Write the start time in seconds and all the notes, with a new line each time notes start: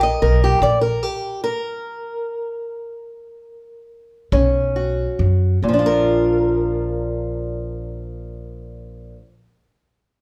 Already playing: A#3 A#4
0.03 D#5
0.22 B1 A#4
0.44 G4
0.62 A#1 A#2 D5, kick
0.81 A#4
1.03 G4
1.44 A#4
4.32 B1 B2 C#4, kick
4.76 F#4
5.19 F#2
5.62 A#1 A#2
5.68 F3
5.74 D4
5.79 F4
5.86 A#4